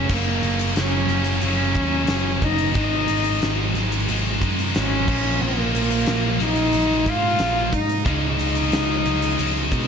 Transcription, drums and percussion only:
0.09 kick loud
0.09 crash medium
0.43 closed hi-hat medium
0.59 closed hi-hat medium
0.76 snare loud
0.76 closed hi-hat medium
1.09 closed hi-hat medium
1.24 closed hi-hat medium
1.42 closed hi-hat medium
1.75 kick medium
1.75 closed hi-hat medium
2.07 snare loud
2.07 closed hi-hat medium
2.42 kick medium
2.42 closed hi-hat medium
2.58 closed hi-hat medium
2.75 kick loud
2.75 closed hi-hat medium
3.08 closed hi-hat medium
3.24 closed hi-hat medium
3.42 snare loud
3.42 closed hi-hat medium
3.75 snare soft
3.75 closed hi-hat medium
3.92 closed hi-hat medium
4.09 closed hi-hat medium
4.42 kick medium
4.42 closed hi-hat medium
4.59 closed hi-hat medium
4.75 snare loud
4.75 closed hi-hat medium
5.08 kick loud
5.08 crash loud
5.75 closed hi-hat medium
5.91 closed hi-hat medium
6.06 snare loud
6.06 closed hi-hat medium
6.40 snare soft
6.40 closed hi-hat medium
6.56 closed hi-hat medium
6.73 closed hi-hat medium
7.06 kick medium
7.06 closed hi-hat medium
7.39 snare loud
7.39 closed hi-hat medium
7.73 kick medium
7.73 closed hi-hat medium
7.89 closed hi-hat medium
8.06 kick loud
8.06 closed hi-hat medium
8.39 closed hi-hat medium
8.55 closed hi-hat medium
8.72 snare loud
8.72 closed hi-hat medium
9.05 closed hi-hat medium
9.22 closed hi-hat medium
9.39 closed hi-hat medium
9.72 kick medium
9.72 closed hi-hat medium

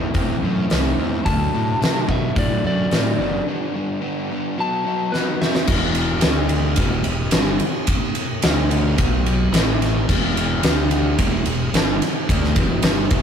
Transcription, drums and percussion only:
0.14 kick loud
0.14 open hi-hat soft
0.70 snare loud
0.70 open hi-hat soft
1.26 kick loud
1.26 open hi-hat soft
1.82 snare loud
1.82 open hi-hat soft
2.09 kick medium
2.36 kick loud
2.36 open hi-hat soft
2.91 snare loud
2.91 open hi-hat soft
5.14 snare soft
5.42 snare medium
5.55 snare medium
5.67 kick loud
5.67 crash loud
5.95 ride medium
6.21 snare loud
6.21 ride medium
6.49 ride medium
6.76 kick loud
6.76 ride loud
7.04 ride medium
7.31 snare loud
7.31 ride loud
7.60 ride medium
7.87 kick loud
7.87 ride loud
8.15 ride medium
8.42 snare loud
8.42 ride loud
8.71 ride medium
8.98 kick loud
8.98 ride loud
9.26 ride medium
9.54 snare loud
9.54 ride loud
9.82 snare soft
9.82 ride medium
10.09 kick loud
10.09 crash medium
10.37 ride medium
10.63 snare loud
10.63 ride loud
10.91 ride medium
11.19 kick loud
11.19 ride loud
11.46 ride medium
11.74 snare loud
11.74 ride loud
12.02 snare soft
12.02 ride medium
12.29 kick loud
12.29 ride medium
12.44 snare soft
12.56 kick loud
12.56 ride medium
12.82 snare loud
12.82 ride loud
13.11 kick loud
13.11 ride medium

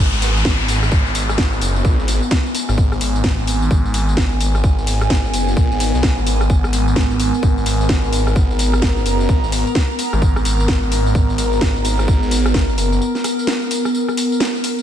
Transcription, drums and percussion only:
0.14 tambourine soft
0.22 open hi-hat loud
0.22 tambourine medium
0.37 tambourine soft
0.45 kick loud
0.45 snare loud
0.45 tambourine soft
0.60 tambourine soft
0.68 open hi-hat medium
0.68 tambourine medium
0.83 cross-stick medium
0.83 tambourine soft
0.92 kick loud
0.92 tambourine soft
1.06 tambourine soft
1.15 open hi-hat loud
1.15 tambourine medium
1.29 cross-stick medium
1.29 tambourine soft
1.38 kick loud
1.38 snare loud
1.38 tambourine soft
1.53 tambourine soft
1.62 open hi-hat medium
1.62 tambourine medium
1.76 tambourine soft
1.85 kick loud
1.85 tambourine soft
2.00 tambourine soft
2.08 open hi-hat loud
2.08 tambourine medium
2.23 tambourine soft
2.31 kick loud
2.31 snare loud
2.31 tambourine soft
2.46 tambourine soft
2.55 open hi-hat loud
2.55 tambourine medium
2.69 cross-stick medium
2.69 tambourine soft
2.78 kick loud
2.78 tambourine soft
2.92 cross-stick medium
2.92 tambourine soft
3.01 open hi-hat loud
3.01 tambourine medium
3.16 tambourine soft
3.24 kick loud
3.24 snare loud
3.24 tambourine soft
3.39 tambourine soft
3.47 open hi-hat medium
3.47 tambourine medium
3.62 tambourine soft
3.71 kick loud
3.71 tambourine soft
3.85 tambourine soft
3.94 open hi-hat loud
3.94 tambourine medium
4.09 tambourine soft
4.17 kick loud
4.17 snare loud
4.17 tambourine soft
4.32 tambourine soft
4.41 open hi-hat loud
4.41 tambourine medium
4.55 cross-stick medium
4.55 tambourine soft
4.64 kick loud
4.64 tambourine soft
4.79 tambourine soft
4.87 open hi-hat loud
4.87 tambourine medium
5.01 cross-stick medium
5.01 tambourine soft
5.10 kick loud
5.10 snare loud
5.10 tambourine soft
5.25 tambourine soft
5.34 open hi-hat loud
5.34 tambourine medium
5.48 tambourine soft
5.57 kick loud
5.57 tambourine soft
5.72 tambourine soft
5.80 open hi-hat loud
5.80 tambourine medium
5.95 tambourine soft
6.03 kick loud
6.03 snare loud
6.03 tambourine soft
6.18 tambourine soft
6.27 open hi-hat loud
6.27 tambourine medium
6.41 cross-stick medium
6.41 tambourine soft
6.50 kick loud
6.50 tambourine soft
6.64 cross-stick medium
6.64 tambourine soft
6.73 open hi-hat loud
6.73 tambourine medium
6.88 tambourine soft
6.96 kick loud
6.96 snare loud
6.96 tambourine soft
7.11 tambourine soft
7.20 open hi-hat medium
7.20 tambourine medium
7.34 tambourine soft
7.43 kick loud
7.43 tambourine soft
7.58 tambourine soft
7.66 open hi-hat loud
7.66 tambourine medium
7.81 tambourine soft
7.89 kick loud
7.89 snare loud
7.89 tambourine soft
8.04 tambourine soft
8.13 open hi-hat medium
8.13 tambourine medium
8.27 cross-stick medium
8.27 tambourine soft
8.36 kick loud
8.36 tambourine soft
8.51 tambourine soft
8.59 open hi-hat loud
8.59 tambourine medium
8.73 cross-stick medium
8.73 tambourine soft
8.82 kick loud
8.82 snare loud
8.82 tambourine soft
8.97 tambourine soft
9.06 open hi-hat medium
9.06 tambourine medium
9.21 tambourine soft
9.29 kick loud
9.29 tambourine soft
9.44 tambourine soft
9.52 open hi-hat loud
9.52 tambourine medium
9.67 tambourine soft
9.75 kick loud
9.75 snare loud
9.75 tambourine soft
9.90 tambourine soft
9.99 open hi-hat medium
9.99 tambourine medium
10.13 cross-stick medium
10.13 tambourine soft
10.22 kick loud
10.22 tambourine soft
10.36 cross-stick medium
10.36 tambourine soft
10.45 open hi-hat loud
10.45 tambourine medium
10.60 tambourine soft
10.68 kick loud
10.68 snare loud
10.68 tambourine soft
10.83 tambourine soft
10.92 open hi-hat medium
10.92 tambourine medium
11.07 tambourine soft
11.15 kick loud
11.15 tambourine soft
11.30 tambourine soft
11.38 open hi-hat loud
11.38 tambourine medium
11.53 tambourine soft
11.61 kick loud
11.61 snare loud
11.61 tambourine soft
11.76 tambourine soft
11.85 open hi-hat medium
11.85 tambourine medium
11.99 cross-stick medium
11.99 tambourine soft
12.08 kick loud
12.08 tambourine soft
12.23 tambourine soft
12.31 open hi-hat loud
12.31 tambourine medium
12.46 cross-stick medium
12.46 tambourine soft
12.54 kick loud
12.54 snare loud
12.54 tambourine soft
12.69 tambourine soft
12.78 open hi-hat medium
12.78 tambourine medium
12.93 tambourine soft
13.02 tambourine soft
13.15 snare soft
13.15 tambourine soft
13.24 cross-stick medium
13.24 open hi-hat loud
13.24 tambourine medium
13.39 tambourine soft
13.47 snare loud
13.47 tambourine soft
13.62 tambourine soft
13.71 open hi-hat medium
13.71 tambourine medium
13.85 cross-stick medium
13.85 tambourine soft
13.95 tambourine soft
14.08 cross-stick medium
14.08 tambourine soft
14.17 open hi-hat loud
14.17 tambourine medium
14.32 tambourine soft
14.40 snare loud
14.40 tambourine soft
14.55 tambourine soft
14.64 open hi-hat medium
14.64 tambourine medium
14.79 tambourine soft

